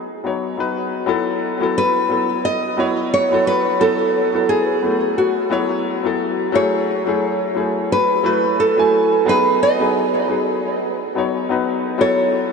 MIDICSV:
0, 0, Header, 1, 3, 480
1, 0, Start_track
1, 0, Tempo, 681818
1, 761, Time_signature, 4, 2, 24, 8
1, 8817, End_track
2, 0, Start_track
2, 0, Title_t, "Nylon-string guitar"
2, 0, Program_c, 0, 24
2, 1252, Note_on_c, 0, 71, 100
2, 1722, Note_off_c, 0, 71, 0
2, 1725, Note_on_c, 0, 75, 101
2, 2175, Note_off_c, 0, 75, 0
2, 2208, Note_on_c, 0, 73, 102
2, 2428, Note_off_c, 0, 73, 0
2, 2444, Note_on_c, 0, 71, 94
2, 2681, Note_on_c, 0, 69, 86
2, 2690, Note_off_c, 0, 71, 0
2, 3160, Note_off_c, 0, 69, 0
2, 3162, Note_on_c, 0, 68, 92
2, 3614, Note_off_c, 0, 68, 0
2, 3647, Note_on_c, 0, 66, 73
2, 4336, Note_off_c, 0, 66, 0
2, 4614, Note_on_c, 0, 73, 87
2, 5575, Note_off_c, 0, 73, 0
2, 5578, Note_on_c, 0, 71, 93
2, 6021, Note_off_c, 0, 71, 0
2, 6053, Note_on_c, 0, 69, 89
2, 6541, Note_off_c, 0, 69, 0
2, 6541, Note_on_c, 0, 71, 99
2, 6755, Note_off_c, 0, 71, 0
2, 6778, Note_on_c, 0, 75, 107
2, 7221, Note_off_c, 0, 75, 0
2, 8454, Note_on_c, 0, 73, 80
2, 8817, Note_off_c, 0, 73, 0
2, 8817, End_track
3, 0, Start_track
3, 0, Title_t, "Grand piano"
3, 0, Program_c, 1, 0
3, 167, Note_on_c, 1, 54, 75
3, 174, Note_on_c, 1, 59, 63
3, 180, Note_on_c, 1, 63, 61
3, 187, Note_on_c, 1, 73, 82
3, 380, Note_off_c, 1, 54, 0
3, 383, Note_off_c, 1, 59, 0
3, 386, Note_off_c, 1, 63, 0
3, 390, Note_off_c, 1, 73, 0
3, 405, Note_on_c, 1, 54, 70
3, 411, Note_on_c, 1, 59, 65
3, 417, Note_on_c, 1, 63, 67
3, 424, Note_on_c, 1, 71, 89
3, 730, Note_off_c, 1, 54, 0
3, 733, Note_off_c, 1, 59, 0
3, 736, Note_off_c, 1, 63, 0
3, 739, Note_off_c, 1, 71, 0
3, 747, Note_on_c, 1, 54, 93
3, 753, Note_on_c, 1, 59, 83
3, 760, Note_on_c, 1, 64, 86
3, 766, Note_on_c, 1, 69, 96
3, 1098, Note_off_c, 1, 54, 0
3, 1101, Note_off_c, 1, 59, 0
3, 1105, Note_off_c, 1, 64, 0
3, 1108, Note_off_c, 1, 69, 0
3, 1129, Note_on_c, 1, 54, 80
3, 1136, Note_on_c, 1, 59, 72
3, 1141, Note_on_c, 1, 64, 74
3, 1148, Note_on_c, 1, 69, 92
3, 1452, Note_off_c, 1, 54, 0
3, 1455, Note_off_c, 1, 59, 0
3, 1458, Note_off_c, 1, 64, 0
3, 1461, Note_off_c, 1, 69, 0
3, 1469, Note_on_c, 1, 54, 73
3, 1476, Note_on_c, 1, 59, 64
3, 1483, Note_on_c, 1, 64, 66
3, 1489, Note_on_c, 1, 69, 80
3, 1930, Note_off_c, 1, 54, 0
3, 1934, Note_off_c, 1, 59, 0
3, 1937, Note_off_c, 1, 64, 0
3, 1940, Note_off_c, 1, 69, 0
3, 1949, Note_on_c, 1, 54, 91
3, 1957, Note_on_c, 1, 59, 85
3, 1963, Note_on_c, 1, 64, 87
3, 1970, Note_on_c, 1, 73, 103
3, 2299, Note_off_c, 1, 54, 0
3, 2303, Note_off_c, 1, 59, 0
3, 2306, Note_off_c, 1, 64, 0
3, 2309, Note_off_c, 1, 73, 0
3, 2330, Note_on_c, 1, 54, 86
3, 2337, Note_on_c, 1, 59, 80
3, 2343, Note_on_c, 1, 64, 81
3, 2350, Note_on_c, 1, 69, 93
3, 2652, Note_off_c, 1, 54, 0
3, 2656, Note_off_c, 1, 59, 0
3, 2659, Note_off_c, 1, 64, 0
3, 2662, Note_off_c, 1, 69, 0
3, 2672, Note_on_c, 1, 54, 91
3, 2678, Note_on_c, 1, 59, 83
3, 2685, Note_on_c, 1, 64, 82
3, 2691, Note_on_c, 1, 69, 103
3, 3021, Note_off_c, 1, 54, 0
3, 3024, Note_off_c, 1, 59, 0
3, 3027, Note_off_c, 1, 64, 0
3, 3030, Note_off_c, 1, 69, 0
3, 3047, Note_on_c, 1, 54, 76
3, 3054, Note_on_c, 1, 59, 71
3, 3061, Note_on_c, 1, 64, 71
3, 3068, Note_on_c, 1, 69, 87
3, 3371, Note_off_c, 1, 54, 0
3, 3374, Note_off_c, 1, 59, 0
3, 3378, Note_off_c, 1, 64, 0
3, 3381, Note_off_c, 1, 69, 0
3, 3391, Note_on_c, 1, 54, 68
3, 3397, Note_on_c, 1, 59, 65
3, 3404, Note_on_c, 1, 64, 64
3, 3410, Note_on_c, 1, 57, 78
3, 3851, Note_off_c, 1, 54, 0
3, 3854, Note_off_c, 1, 59, 0
3, 3858, Note_off_c, 1, 64, 0
3, 3861, Note_off_c, 1, 57, 0
3, 3871, Note_on_c, 1, 54, 94
3, 3876, Note_on_c, 1, 59, 87
3, 3882, Note_on_c, 1, 64, 86
3, 3889, Note_on_c, 1, 73, 106
3, 4220, Note_off_c, 1, 54, 0
3, 4223, Note_off_c, 1, 59, 0
3, 4226, Note_off_c, 1, 64, 0
3, 4229, Note_off_c, 1, 73, 0
3, 4249, Note_on_c, 1, 54, 82
3, 4256, Note_on_c, 1, 59, 72
3, 4262, Note_on_c, 1, 64, 77
3, 4269, Note_on_c, 1, 69, 91
3, 4572, Note_off_c, 1, 54, 0
3, 4575, Note_off_c, 1, 59, 0
3, 4579, Note_off_c, 1, 64, 0
3, 4582, Note_off_c, 1, 69, 0
3, 4592, Note_on_c, 1, 54, 98
3, 4598, Note_on_c, 1, 57, 88
3, 4604, Note_on_c, 1, 64, 87
3, 4612, Note_on_c, 1, 68, 101
3, 4940, Note_off_c, 1, 54, 0
3, 4943, Note_off_c, 1, 57, 0
3, 4947, Note_off_c, 1, 64, 0
3, 4951, Note_off_c, 1, 68, 0
3, 4967, Note_on_c, 1, 54, 88
3, 4976, Note_on_c, 1, 57, 75
3, 4982, Note_on_c, 1, 64, 78
3, 4988, Note_on_c, 1, 68, 90
3, 5291, Note_off_c, 1, 54, 0
3, 5295, Note_off_c, 1, 57, 0
3, 5298, Note_off_c, 1, 64, 0
3, 5301, Note_off_c, 1, 68, 0
3, 5313, Note_on_c, 1, 54, 74
3, 5319, Note_on_c, 1, 57, 67
3, 5326, Note_on_c, 1, 64, 68
3, 5332, Note_on_c, 1, 68, 81
3, 5772, Note_off_c, 1, 54, 0
3, 5775, Note_off_c, 1, 57, 0
3, 5779, Note_off_c, 1, 64, 0
3, 5782, Note_off_c, 1, 68, 0
3, 5795, Note_on_c, 1, 54, 92
3, 5800, Note_on_c, 1, 57, 93
3, 5806, Note_on_c, 1, 64, 84
3, 5814, Note_on_c, 1, 71, 104
3, 6142, Note_off_c, 1, 54, 0
3, 6145, Note_off_c, 1, 57, 0
3, 6148, Note_off_c, 1, 64, 0
3, 6152, Note_off_c, 1, 71, 0
3, 6171, Note_on_c, 1, 54, 84
3, 6178, Note_on_c, 1, 57, 81
3, 6184, Note_on_c, 1, 64, 77
3, 6191, Note_on_c, 1, 80, 99
3, 6493, Note_off_c, 1, 54, 0
3, 6496, Note_off_c, 1, 57, 0
3, 6499, Note_off_c, 1, 64, 0
3, 6503, Note_off_c, 1, 80, 0
3, 6514, Note_on_c, 1, 54, 96
3, 6520, Note_on_c, 1, 59, 87
3, 6528, Note_on_c, 1, 63, 81
3, 6534, Note_on_c, 1, 68, 102
3, 6861, Note_off_c, 1, 54, 0
3, 6865, Note_off_c, 1, 59, 0
3, 6869, Note_off_c, 1, 63, 0
3, 6872, Note_off_c, 1, 68, 0
3, 6891, Note_on_c, 1, 54, 80
3, 6897, Note_on_c, 1, 59, 72
3, 6904, Note_on_c, 1, 63, 77
3, 6910, Note_on_c, 1, 68, 88
3, 7213, Note_off_c, 1, 54, 0
3, 7216, Note_off_c, 1, 59, 0
3, 7219, Note_off_c, 1, 63, 0
3, 7222, Note_off_c, 1, 68, 0
3, 7236, Note_on_c, 1, 54, 74
3, 7243, Note_on_c, 1, 59, 63
3, 7249, Note_on_c, 1, 63, 65
3, 7256, Note_on_c, 1, 68, 77
3, 7694, Note_off_c, 1, 54, 0
3, 7697, Note_off_c, 1, 59, 0
3, 7700, Note_off_c, 1, 63, 0
3, 7704, Note_off_c, 1, 68, 0
3, 7851, Note_on_c, 1, 54, 82
3, 7857, Note_on_c, 1, 59, 73
3, 7865, Note_on_c, 1, 63, 71
3, 7871, Note_on_c, 1, 73, 87
3, 8062, Note_off_c, 1, 54, 0
3, 8065, Note_off_c, 1, 59, 0
3, 8069, Note_off_c, 1, 63, 0
3, 8072, Note_off_c, 1, 73, 0
3, 8089, Note_on_c, 1, 54, 86
3, 8096, Note_on_c, 1, 59, 76
3, 8103, Note_on_c, 1, 63, 78
3, 8109, Note_on_c, 1, 71, 84
3, 8412, Note_off_c, 1, 54, 0
3, 8415, Note_off_c, 1, 59, 0
3, 8419, Note_off_c, 1, 63, 0
3, 8422, Note_off_c, 1, 71, 0
3, 8434, Note_on_c, 1, 54, 98
3, 8439, Note_on_c, 1, 59, 84
3, 8447, Note_on_c, 1, 64, 79
3, 8453, Note_on_c, 1, 69, 101
3, 8782, Note_off_c, 1, 54, 0
3, 8784, Note_off_c, 1, 59, 0
3, 8788, Note_off_c, 1, 64, 0
3, 8791, Note_off_c, 1, 69, 0
3, 8817, End_track
0, 0, End_of_file